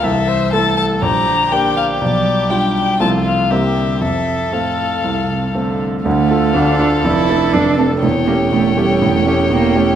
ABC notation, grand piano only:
X:1
M:4/4
L:1/8
Q:1/4=121
K:F
V:1 name="Grand piano"
C,,2 [A,EA]2 B,,,2 [B,DG]2 | =B,,,2 [G,DF]2 [C,,A,CF]2 [C,,_B,CG]2 | F,,2 [A,CA]2 C,,2 [A,CA]2 | [K:Dm] [D,,D,] [A,FA] [D,,D,] [A,FA] [F,,,F,,] [A,DA] [F,,,F,,] [A,DA] |
[E,,,E,,] [A,^CG] [E,,,E,,] [A,CG] [E,,,E,,] [A,CG] [E,,,E,,] [A,CG] |]